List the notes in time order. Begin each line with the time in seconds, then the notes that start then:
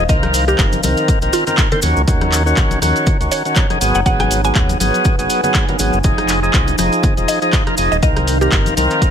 Already playing: D#4 C5 F5
0.09 C2 D#3 C4 A#4 D#5, kick, closed hi-hat, maracas
0.23 cross-stick, closed hi-hat, high conga
0.34 open hi-hat, maracas
0.48 D#3 C4 G4 A#4, maracas
0.58 G1 G5, kick, clap, closed hi-hat, maracas
0.72 closed hi-hat, high conga, maracas
0.83 C2 D#3 C4 A#4, open hi-hat, high conga, maracas
0.88 A#5
0.97 closed hi-hat, maracas
1.08 kick, closed hi-hat, maracas
1.22 A#1 D#3 C4 A#4, closed hi-hat, maracas
1.33 F4, open hi-hat, maracas
1.47 D#3 C4 A#4, closed hi-hat, low conga, maracas
1.57 kick, clap, closed hi-hat, maracas
1.72 D#3 C4 A#4 C5, closed hi-hat, low conga
1.82 D#2 D#3 C#4 F#4, open hi-hat, high conga, maracas
1.96 C#2, maracas
2.07 D#2 D#3 C#4 F#4, kick, closed hi-hat, maracas
2.21 cross-stick, closed hi-hat, high conga
2.27 C#5
2.32 clap, open hi-hat, maracas
2.46 D#3 C#4 F#4, maracas
2.57 A#1, kick, clap, closed hi-hat, maracas
2.71 F#5, closed hi-hat, high conga, maracas
2.82 D#2 D#3 C#4 F#4, cross-stick, open hi-hat, high conga, maracas
2.96 closed hi-hat, maracas
3.06 kick, closed hi-hat, low conga, maracas
3.20 C#2 D#3 C#4 F#4, closed hi-hat, maracas
3.32 C#5, open hi-hat, maracas
3.45 D#3 C#4 F#4, closed hi-hat, maracas
3.56 kick, clap, closed hi-hat, maracas
3.70 D#3 C#4 G#4, cross-stick, closed hi-hat, high conga
3.81 G#1 F#3 B3 D#4 G#4, open hi-hat, maracas
3.95 F#1 F#5, maracas
4.06 G#1 F#3 B3 G#4 F#5, kick, closed hi-hat, maracas
4.19 G#5, cross-stick, closed hi-hat, high conga
4.28 B4, open hi-hat, maracas
4.44 F#3 B3 G#4 G#5, closed hi-hat, maracas
4.55 D#2, kick, clap, closed hi-hat, maracas
4.69 closed hi-hat, high conga, maracas
4.80 G#1 F#3 B3 G#4 G#5, open hi-hat, high conga, maracas
4.94 closed hi-hat, maracas
5.05 kick, closed hi-hat, maracas
5.19 F#1 F#3 B3 G#4, closed hi-hat, maracas
5.30 open hi-hat, maracas
5.43 F#3 B3 G#4, closed hi-hat, low conga, maracas
5.54 kick, clap, closed hi-hat, maracas
5.68 F#3 B3 A#4, closed hi-hat, low conga
5.79 G#1 F#3 B3 G#4, open hi-hat, high conga, maracas
5.93 F#1, maracas
6.04 F1 F3 D#4 G#4, kick, closed hi-hat, maracas
6.18 cross-stick, closed hi-hat, high conga
6.29 C5, clap, open hi-hat, maracas
6.37 F5
6.43 F3 D#4 G#4, maracas
6.53 C2, kick, clap, closed hi-hat, maracas
6.67 closed hi-hat, high conga, maracas
6.78 F1 F3 D#4 G#4, cross-stick, open hi-hat, high conga, maracas
6.92 closed hi-hat, maracas
7.03 kick, closed hi-hat, low conga, maracas
7.17 D#1 F3 D#4 G#4, closed hi-hat, maracas
7.28 D#5, open hi-hat, maracas
7.42 F3 D#4 G#4, closed hi-hat, maracas
7.53 kick, clap, closed hi-hat, maracas
7.67 F3 D#4 A#4, cross-stick, closed hi-hat, high conga
7.77 F1 F3 D#4 G#4, open hi-hat, maracas
7.92 D#1 D#5, maracas
8.02 C2 D#3 C4 A#4 D#5, kick, closed hi-hat, maracas
8.16 cross-stick, closed hi-hat, high conga
8.27 open hi-hat, maracas
8.41 D#3 C4 G4 A#4, maracas
8.52 G1, kick, clap, closed hi-hat, maracas
8.66 closed hi-hat, high conga, maracas
8.77 C2 D#3 C4 A#4 G5, open hi-hat, high conga, maracas
8.81 A#5
8.90 closed hi-hat, maracas
9.02 kick, closed hi-hat, maracas